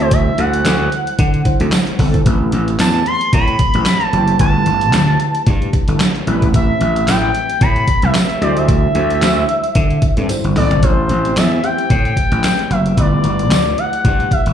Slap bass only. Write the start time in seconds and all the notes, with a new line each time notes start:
Already playing: D2
0.38 D2
0.65 D2
1.19 D3
1.60 D2
1.99 G1
2.26 A1
2.53 A1
2.79 E2
3.33 A2
3.75 A1
4.13 F#1
4.40 G1
4.66 G1
4.93 D2
5.47 G2
5.88 G1
6.27 A1
6.81 A1
7.08 A1
7.61 A2
8.03 C2
8.41 D2
8.95 D2
9.22 D2
9.75 D3
10.17 G2
10.44 G1
10.56 A1
10.71 G1
10.83 A1
11.09 A1
11.36 E2
11.90 A2
12.32 A1
12.70 F#1
12.97 G1
13.24 G1
13.51 D2
14.05 G2
14.46 G1